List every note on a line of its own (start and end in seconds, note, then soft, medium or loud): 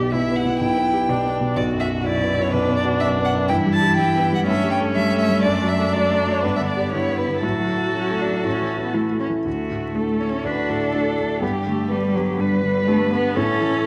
0.00 0.58 B1 soft
0.00 0.13 B2 soft
0.00 0.14 G4 medium
0.00 0.23 G4 soft
0.12 0.39 B2 soft
0.12 0.49 B2 soft
0.12 1.11 E4 soft
0.12 0.38 E5 medium
0.29 0.55 B3 soft
0.36 0.60 F#5 medium
0.45 0.70 B2 soft
0.60 1.54 B1 soft
0.60 1.31 G5 medium
0.77 1.03 B3 soft
0.93 1.19 G4 soft
1.09 1.34 B2 soft
1.09 1.45 B2 medium
1.09 1.59 D4 soft
1.25 1.50 B3 soft
1.41 1.57 B2 soft
1.56 2.50 B1 medium
1.56 3.46 B2 soft
1.56 2.07 F#4 medium
1.56 1.65 D5 medium
1.73 1.99 F#2 soft
1.80 1.88 E5 medium
1.88 2.14 F#4 soft
2.04 2.30 F#2 soft
2.04 2.53 E4 medium
2.04 2.43 D5 medium
2.21 2.47 B3 soft
2.37 2.63 F#2 soft
2.41 2.53 C#5 medium
2.52 3.47 B1 soft
2.52 3.51 D4 medium
2.52 2.76 B4 medium
2.68 2.95 B3 soft
2.76 2.84 D5 medium
2.85 3.11 F#4 soft
3.00 3.27 F#2 soft
3.00 3.08 E5 medium
3.18 3.44 B3 soft
3.25 3.33 F#5 medium
3.34 3.50 F#2 soft
3.48 4.45 G2 medium
3.48 4.45 E3 soft
3.48 4.47 E4 medium
3.48 3.56 G5 medium
3.66 3.92 G3 soft
3.73 3.97 A5 medium
3.82 4.08 G4 soft
3.97 4.24 G3 soft
3.97 4.34 G5 medium
4.16 4.41 B3 soft
4.32 4.48 G3 soft
4.32 4.40 F#5 medium
4.47 5.42 G2 medium
4.47 6.45 A3 soft
4.47 5.46 C#4 medium
4.47 4.71 E5 medium
4.64 4.90 G3 soft
4.71 4.79 G5 medium
4.80 5.06 A4 soft
4.95 5.22 G3 soft
4.95 5.19 E5 medium
5.13 5.38 A3 soft
5.19 5.43 E5 medium
5.29 5.45 G3 soft
5.43 6.40 F#2 medium
5.43 6.93 D4 medium
5.43 5.70 D5 medium
5.62 5.87 F#3 soft
5.69 5.95 E5 medium
5.78 6.04 A4 soft
5.93 6.20 F#3 soft
5.93 6.33 D5 medium
6.10 6.37 A3 soft
6.27 6.43 F#3 soft
6.31 6.44 C#5 medium
6.43 7.40 G2 soft
6.43 7.45 B3 soft
6.43 6.55 B4 medium
6.56 6.86 D3 soft
6.56 6.61 E5 medium
6.68 6.92 D5 soft
6.77 7.03 G4 soft
6.92 7.19 D3 soft
6.92 7.45 E4 soft
6.92 7.18 C#5 medium
7.09 7.36 B3 soft
7.17 7.42 B4 medium
7.26 7.43 D3 soft
7.43 8.42 A2 soft
7.43 7.89 F#3 soft
7.43 9.21 F#4 medium
7.43 8.92 A4 medium
7.60 7.87 F#3 soft
7.77 8.05 F#4 soft
7.94 8.21 F#3 soft
7.94 8.22 C#4 soft
8.11 8.38 A3 soft
8.21 8.45 D4 soft
8.27 8.45 F#3 soft
8.44 9.42 A2 soft
8.44 8.82 C#4 soft
8.62 8.89 E3 soft
8.78 9.05 E4 soft
8.83 8.96 B3 soft
8.94 9.22 E3 soft
8.94 9.19 A3 soft
9.11 9.39 A3 soft
9.20 9.28 C#4 soft
9.29 9.46 E3 soft
9.45 10.42 D2 soft
9.45 10.22 A3 soft
9.45 9.97 F#4 soft
9.71 10.10 A2 soft
9.95 10.17 A3 soft
9.95 10.18 D4 soft
9.95 10.18 F#4 soft
9.95 10.48 A4 soft
10.20 10.59 A3 soft
10.20 10.46 C#4 soft
10.44 11.39 D2 soft
10.44 11.42 D4 soft
10.44 10.90 F#4 soft
10.44 10.71 B4 soft
10.69 11.08 A2 soft
10.69 11.44 A4 soft
10.93 11.16 A3 soft
10.93 11.16 D4 soft
10.93 11.16 F#4 soft
10.93 11.40 A4 soft
11.18 11.42 A3 soft
11.40 12.36 G2 soft
11.40 11.50 B3 soft
11.40 11.88 G4 soft
11.40 12.42 G4 soft
11.66 12.05 D3 soft
11.66 11.92 A3 soft
11.89 12.16 G3 medium
11.89 12.12 B3 soft
11.89 12.13 D4 soft
11.89 12.13 G4 soft
11.89 12.38 B4 soft
12.15 12.40 F#3 soft
12.15 12.54 B3 soft
12.38 13.33 G2 soft
12.38 12.63 G3 soft
12.38 13.34 B4 soft
12.38 13.35 B4 soft
12.62 13.02 D3 soft
12.62 12.89 G3 soft
12.87 13.12 A3 medium
12.87 13.09 B3 soft
12.87 13.09 D4 soft
12.87 13.10 G4 soft
13.11 13.36 B3 soft
13.11 13.38 B3 medium
13.36 13.86 A2 soft
13.36 13.86 C#4 medium
13.36 13.86 A4 soft
13.36 13.86 A4 medium
13.61 13.86 E3 soft